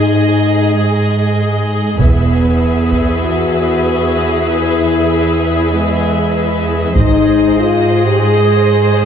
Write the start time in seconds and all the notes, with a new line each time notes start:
Already playing: G#2 D#4 G#4 D#5
0.74 G#3
1.99 E1 E2 B3 G#4 B4 E5, taiko
2.93 taiko
3.22 F#4
4.47 E4
5.72 G#3
6.95 G#1 G#2 D#4 G#4 C5 D#5, taiko
7.57 F4
8.05 G4
8.18 G#4